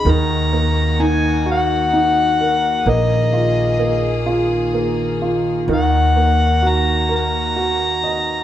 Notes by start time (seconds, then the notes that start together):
Already playing: B5
0.04 D#2 D#3 A#3 F#4
0.10 A#5
0.53 A#3
0.99 D#4 G#5
1.46 F#4
1.51 F#5
1.93 D#4
2.41 A#4
2.84 A#1 D#3 A#3 G#4
2.89 D#5
3.33 F4
3.79 A#3
4.26 F4
4.74 A#3
5.22 F4
5.68 D#2 D#3 F#4
5.74 F#5
6.16 A#3
6.63 F#4
6.68 A#5
7.09 A#4
7.16 A#5
7.56 F#4
8.04 D#5